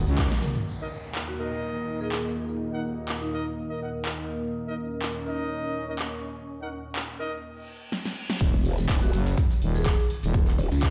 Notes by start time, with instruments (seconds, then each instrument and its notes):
Already playing: analog synth pad D#3 G#3 F#4, ambient pad A#3 A#4 D#5 F#5
0.06 fm bass C#2, snare, closed hi-hat, maracas
0.18 horn section D#4 A#4 C#5, kick, clap, closed hi-hat, maracas
0.31 snare, closed hi-hat
0.42 snare, closed hi-hat, open hi-hat, mid tom, maracas
0.55 closed hi-hat, mid tom, maracas
0.66 analog synth pad D#2 A#2 A#3 D#4, ambient pad A#3, downlifter
0.80 horn section D#4 A#4 D#5
0.97 ambient pad A#4
1.15 clap
1.28 vibraphone F#4
1.39 horn section D#4 A#4 D#5
1.46 ambient pad D#5
2.01 horn section D#4 A#4 D#5, vibraphone G#4
2.12 vibraphone G#4, clap
2.69 ambient pad D#6
2.73 horn section D#4 A#4 F#5
3.09 clap
3.22 vibraphone D#4
3.33 horn section D#4 A#4 D#5
3.70 horn section D#4 A#4 D#5
3.81 horn section D#4 A#4 F#5
4.05 clap
4.54 analog synth pad C#4
4.67 horn section D#4 A#4 D#5
5.02 clap
5.14 ambient pad C#6
5.26 horn section D#4 A#4 D#5
5.88 horn section D#4 A#4 D#5
5.99 clap
6.60 horn section D#4 A#4 F#5
6.96 clap
7.20 horn section D#4 A#4 D#5
7.44 reverse cymbal
7.92 snare
8.06 snare
8.30 snare
8.41 fm bass D#1, kick, closed hi-hat, crash, impact, maracas
8.54 wobble bass E1, snare, closed hi-hat, maracas
8.65 closed hi-hat, open hi-hat
8.78 snare, maracas
8.89 wobble bass D#1, kick, snare, clap, closed hi-hat, maracas
9.02 vibraphone F#4, closed hi-hat, maracas
9.13 fm bass F#1, snare, closed hi-hat, open hi-hat
9.27 snare, closed hi-hat, maracas
9.37 kick, snare, closed hi-hat, maracas
9.51 snare, closed hi-hat, maracas
9.62 fm bass D#1, closed hi-hat, open hi-hat
9.75 vibraphone G#4, closed hi-hat, maracas
9.86 vibraphone G#4, kick, snare, clap, closed hi-hat, maracas
9.99 closed hi-hat, maracas
10.10 closed hi-hat, open hi-hat
10.23 fm bass D#1, closed hi-hat, maracas
10.34 kick, closed hi-hat, maracas
10.47 clap, closed hi-hat, maracas
10.58 wobble bass D#1, closed hi-hat, open hi-hat
10.72 wobble bass C#2, closed hi-hat, maracas
10.83 kick, snare, clap, closed hi-hat, maracas